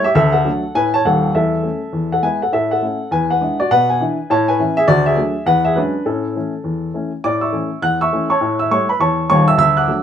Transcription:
0.04 G4 E5
0.15 D2 A4 E5
0.32 A4 F#5
0.45 F#3 A3 D4
0.75 A2 B4 G#5
0.94 C#5 A5
1.05 D#1 D#2 A4 F#5
1.35 E2 A4 E5
1.63 A3 C#4
1.93 E2
2.12 A4 F#5
2.22 G#3 B3 E4 B4 G#5
2.42 A4 F#5
2.52 A2 A4 E5
2.71 A4 F#5
2.82 A3 C#4 E4
3.11 E2 B4 G#5
3.30 B4 F#5
3.41 G#3 D4 E4
3.60 F#4 D5
3.71 B2 B4 F#5
3.90 B4 G#5
4.00 E3 D4 E4
4.30 A2 C#5 A5
4.48 B4 G#5
4.59 E3 C#4 E4
4.77 G#4 E5
4.88 D2 F#4 D5
5.06 G#4 E5
5.17 F#3 A3 D4
5.46 E2 B4 F#5
5.65 G#4 E5
5.75 F#3 G#3 C#4 D4 B4
6.06 A2 C#4 A4
6.36 E3 A3 C#4
6.64 E2
6.94 E3 A3 C#4
7.24 A2 D5 D6
7.41 E5 C#6 E6
7.52 E3 A3 C#4
7.82 E2 F#5 F#6
8.01 E5 C#6 E6
8.13 E3 A3 C#4
8.30 C#5 A5 C#6
8.41 A2
8.59 E5 E6
8.71 G3 A3 E4 C#5 C#6
8.89 B4 B5
8.99 E2 C#5 A5 C#6
9.30 D#1 D#2 C#5 C#6
9.48 E5 E6
9.58 D2 E5 E6
9.77 F#5 D6 F#6
9.88 F#3 A3 D4

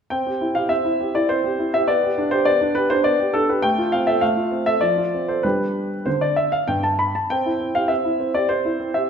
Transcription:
0.10 C4 G5
0.27 G4
0.41 E4
0.55 G4 F5
0.69 C4 E5
0.85 E4
1.00 G4
1.15 E4 D5
1.29 C4 C5
1.44 G4
1.59 E4
1.74 G4 E5
1.88 B3 D5
2.04 G4
2.18 D4
2.31 G4 C5
2.45 B3 D5
2.61 D4
2.75 G4 B4
2.90 D4 C5
3.04 B3 D5
3.20 G4
3.33 D4 A4
3.49 G4 B4
3.62 A3 G5
3.78 F4
3.92 C4 F5
4.07 A4 E5
4.21 A3 F5
4.37 F4
4.51 C4
4.66 A4 E5
4.81 F3 D5
4.97 F4
5.14 C4
5.28 A4 C5
5.43 G3 D4 G4 B4
6.06 D3 C5
6.21 D5
6.36 E5
6.52 F5
6.68 G2 G5
6.83 A5
6.99 B5
7.15 A5
7.30 C4 G5
7.46 E4
7.60 C4
7.75 G4 F5
7.88 C4 E5
8.05 E4
8.20 C4
8.34 G4 D5
8.49 C4 C5
8.65 E4
8.80 C4
8.94 G4 E5

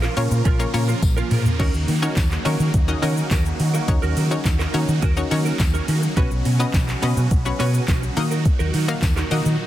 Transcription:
Already playing: C#3 F3 A#3 F4 A#4
0.02 C#4 F4 A#4, clap, shaker
0.17 A#2 A#3 C#4 F4 A#4 C#5, muted clean electric guitar stroke, open hi-hat, shaker
0.31 A#2, muted clean electric guitar stroke, shaker
0.45 A#1 C#4 F4 A#4, kick, closed hi-hat, shaker
0.59 A#3 C#4 F4 A#4 C#5, muted clean electric guitar stroke, shaker
0.74 A#2 A#3 C#4 F4 A#4 C#5, muted clean electric guitar stroke, open hi-hat, shaker
0.88 C#4 F4 A#4, shaker
1.02 A#1, muted clean electric guitar stroke, kick, closed hi-hat, high tom, tambourine, shaker
1.17 C#4 F4 A#4, shaker
1.31 A#2 C#4 F4 A#4, mid tom, open hi-hat, shaker
1.45 floor tom, shaker
1.59 D#2 F#3 C#4 D#4 F#4 A#4 C#5, kick, crash
1.74 D#2, muted clean electric guitar stroke, shaker
1.88 D#3, muted clean electric guitar stroke, open hi-hat, shaker
2.02 C#4 D#4 F#4 A#4 C#5, shaker
2.17 D#2, muted clean electric guitar stroke, kick, snare, clap, closed hi-hat, tambourine, shaker
2.31 muted clean electric guitar stroke, clap, shaker
2.45 D#3 C#4 D#4 F#4 A#4 C#5, open hi-hat, shaker
2.59 D#3 C#4 F#4 A#4, shaker
2.74 D#2, muted clean electric guitar stroke, kick, closed hi-hat, shaker
2.88 C#4 D#4 F#4 A#4 D#5, muted clean electric guitar stroke, shaker
3.02 D#3 C#4 D#4 F#4 A#4 C#5, open hi-hat, shaker
3.16 C#4 F#4 A#4, shaker
3.31 D#2 C#4 F#4 A#4, kick, snare, clap, closed hi-hat, tambourine, shaker
3.45 muted clean electric guitar stroke, shaker
3.59 D#3, muted clean electric guitar stroke, open hi-hat, shaker
3.74 C#4 F#4 A#4, shaker
3.88 D#2 C#4 D#4 F#4 A#4 C#5, muted clean electric guitar stroke, kick, closed hi-hat, shaker
4.02 D#2 C#4 F#4 A#4, shaker
4.16 D#3 C#4 F#4 A#4, open hi-hat, shaker
4.31 C#4 D#4 F#4 A#4 C#5, shaker
4.45 D#2, muted clean electric guitar stroke, kick, snare, clap, closed hi-hat, tambourine, shaker
4.59 C#4 F#4 A#4, clap, shaker
4.74 D#3 C#4 D#4 F#4 A#4 C#5, muted clean electric guitar stroke, open hi-hat, shaker
4.88 D#3, muted clean electric guitar stroke, shaker
5.02 D#2 C#4 F#4 A#4, kick, closed hi-hat, shaker
5.17 C#4 D#4 F#4 A#4 C#5, muted clean electric guitar stroke, shaker
5.31 D#3 C#4 D#4 F#4 A#4 C#5, muted clean electric guitar stroke, open hi-hat, shaker
5.45 C#4 F#4 A#4, shaker
5.59 D#2, muted clean electric guitar stroke, kick, snare, clap, closed hi-hat, tambourine, shaker
5.74 C#4 F#4 A#4, shaker
5.88 D#3 C#4 F#4 A#4, open hi-hat, shaker
6.02 muted clean electric guitar stroke, shaker
6.16 B1 B3 C#4 F#4 B4 C#5, kick, closed hi-hat, shaker
6.31 B1, muted clean electric guitar stroke, shaker
6.45 B2, muted clean electric guitar stroke, open hi-hat, shaker
6.59 B3 C#4 F#4 B4 D#5, shaker
6.74 B1, muted clean electric guitar stroke, kick, snare, clap, closed hi-hat, tambourine, shaker
6.88 muted clean electric guitar stroke, clap, shaker
7.02 B2 B3 C#4 F#4 B4 D#5, open hi-hat, shaker
7.16 B2 C#4 F#4 B4, shaker
7.31 B1, muted clean electric guitar stroke, kick, closed hi-hat, shaker
7.45 B3 C#4 F#4 B4 C#5, muted clean electric guitar stroke, shaker
7.59 B2 B3 C#4 F#4 B4 C#5, open hi-hat, shaker
7.74 C#4 F#4 B4, shaker
7.88 B1 C#4 F#4 B4, kick, snare, clap, closed hi-hat, tambourine, shaker
8.02 muted clean electric guitar stroke, shaker
8.17 A#2 D#3 A#3 D#4 F#4 A#4 D#5, muted clean electric guitar stroke, open hi-hat, shaker
8.31 D#4 F#4 A#4, shaker
8.45 muted clean electric guitar stroke, kick, closed hi-hat, shaker
8.59 D#2 D#4 F#4 A#4, shaker
8.74 D#3 D#4 F#4 A#4, open hi-hat, shaker
8.88 A#3 D#4 F#4 A#4 F5, muted clean electric guitar stroke, shaker
9.02 D#2, muted clean electric guitar stroke, kick, snare, clap, closed hi-hat, tambourine, shaker
9.16 D#4 F#4 A#4, clap, shaker
9.31 D#3 A#3 D#4 F#4 A#4 D#5, open hi-hat, shaker
9.45 D#3, muted clean electric guitar stroke, shaker

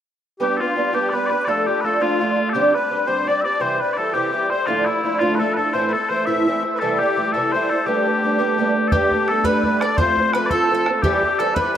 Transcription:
0.39 G3 B3 D4 G4
0.57 D4 F4 G4 A4
0.62 B3
0.76 G3 B3 D4 G4
0.93 G3 B3 D4 G4
1.09 G3 B4 D5
1.14 B3 D4 G4 B4
1.26 G4 B4 D5
1.31 B3 D4
1.45 F3 A3 D4 F4 A4 D5
1.66 A3 D4 F4 G4
1.81 F3 A3 A4 B4
1.85 D4 F4
2.00 F3 A3 D4 F4
2.20 F3 A3 D4 F4
2.36 A3 D4 F4
2.50 G4 A4
2.54 G2 D3 G3 C4 D4 G4
2.72 G3 C4 D4 G4 B4
2.89 G3 C4 D4 G4
3.07 G2 D3 G3 C4 D4 G4 C5
3.27 G3 C4 D4 G4 D5
3.41 D4 G4 D5 E5
3.45 G3 C4
3.60 C3 E3 G3 C4 G4 C5
3.79 G3 C4 G4 B4
3.93 E3 A4 D5
3.98 G3 C4 G4
4.13 C3 E3 G3 C4 G4
4.32 E3 G3 C4 G4
4.50 G3 C4 G4 C5
4.66 D2 A2 F3 A3 D4 E4 F4
4.85 F3 A3 D4 E4
5.03 F3 A3 D4 E4
5.19 D2 A2 F3 A3 D4 E4 F4
5.35 F3 A4 B4
5.39 A3 D4 E4 A4
5.53 D4 E4 A4 B4
5.58 F3 A3
5.72 A2 E3 A3 C4 E4 C5
5.86 B4
5.92 C4 E4 A4
5.96 A3
6.08 E3 A3 C4 E4 C5
6.25 A2 E3 A3 C4 E4 E5
6.46 E3 A3 C4 E4
6.63 A3 C4 E4
6.75 B4
6.79 C3 E3 G3 A3 E4 A4
6.99 G3 A3 E4 G4
7.16 E3 G3 A3 E4
7.33 C3 E3 G3 A3 E4 A4
7.52 E3 G3 A3 E4 C5
7.69 G3 A3 E4 A4
7.86 G3 A3 B3 D4 G4
8.05 A3 B3 D4
8.23 G3 A3 B3 D4
8.38 G3 A3 B3 D4
8.58 G3 A3 B3 D4
8.74 A3 B3 D4
8.88 G3 G4 A4, bodhran
8.92 A3 B3 D4 G4
9.11 A3 B3 D4, bodhran
9.28 G3 A3 B3 D4 A4, bodhran
9.44 G3 A3 B3 D4 B4, bodhran
9.63 G3 A3 B3 D4, bodhran
9.81 A3 B3 D4 D5, bodhran
9.91 D5
9.97 F3 A3 C4 F4 C5, bodhran
10.17 A3 C4 F4, bodhran
10.33 F3 A3 C4 B4, bodhran
10.37 F4
10.46 A4 D5
10.50 F3 A3 C4 F4 A4, bodhran
10.70 F3 A3 C4 F4
10.75 A4
10.86 A3 C4 F4, bodhran
11.02 E3 G3 C4 G4, bodhran
11.23 G3 C4 G4, bodhran
11.39 E3 G3 C4 G4 A4, bodhran
11.54 E3 G3 C4 G4 B4, bodhran

